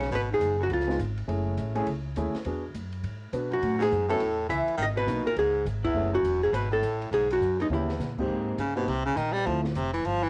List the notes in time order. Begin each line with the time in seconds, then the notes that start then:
Already playing: B1 C#5
0.00 snare, ride
0.11 G#1 B2, ride
0.15 B4
0.31 G#2 G#4
0.40 F#1, hi-hat pedal, ride
0.59 F#2
0.63 F#4
0.69 C#2 F2, ride
0.73 F4
0.80 snare
0.87 G#3 B3 D#4 F4, snare
0.99 G#1, hi-hat pedal, ride
1.18 ride
1.28 F#1 A3 C#4 E4 G#4, ride
1.57 A1, hi-hat pedal, ride
1.75 A3 C#4 E4 G#4, ride
1.87 C#2, ride
2.16 D#2 A3 C#4 E4 G#4, hi-hat pedal, ride
2.35 muted upright bass stroke, snare, ride
2.45 E2 B3 D4 F#4 G#4, ride
2.74 F#2, hi-hat pedal, ride
2.92 ride
3.03 G#2, ride
3.33 B2 B3 D4 F#4 B4, hi-hat pedal, ride
3.50 F#2 F#4, ride
3.62 A2, ride
3.78 G#2, snare, ride
3.82 G#4
3.91 F#2, hi-hat pedal
4.08 A2 B3 C#4 E4 F#4 A4, ride
4.20 E2, ride
4.49 C#2 E3 E5, hi-hat pedal, ride
4.68 muted upright bass stroke, ride
4.77 G#1 D#3, ride
4.83 D#5
4.95 B2 B4
5.07 B1 A#3 B3 D#4 F#4, hi-hat pedal, ride
5.25 A#2 A#4, muted upright bass stroke
5.36 C#2 G#2 G#4, ride
5.65 G#1, hi-hat pedal, ride
5.84 E2 E4, kick, ride
5.94 F#1 A3 C#4 E4 G#4
6.12 F#2 F#4
6.23 E1, hi-hat pedal, ride
6.43 G#2 G#4
6.52 G#1 B2 B4, ride
6.71 A2 A4
6.82 A1, hi-hat pedal, ride
7.02 ride
7.11 B1 G#2 G#4, ride
7.30 F#2 F#4, ride
7.40 F#2, hi-hat pedal
7.59 D#2 D#4, ride
7.69 D#2 E2 A#3 C#4 E4 G4, mid tom
7.89 snare
7.99 A#2, snare, hi-hat pedal
8.18 G#2 A#3 C4 D#4 G4, kick, crash
8.28 G#2
8.58 G2 C#3, hi-hat pedal, ride
8.75 B2 A#3 C4 D#4 G4, ride
8.87 C2 C3, ride
9.05 C#3
9.16 A#1 D#3, hi-hat pedal, ride
9.32 G3, snare
9.46 D2 F3 A3 C4 E4 F4, ride
9.63 A2, snare
9.75 F1 C3, hi-hat pedal, ride
9.93 E3, ride
10.05 G1 F3, ride
10.23 E3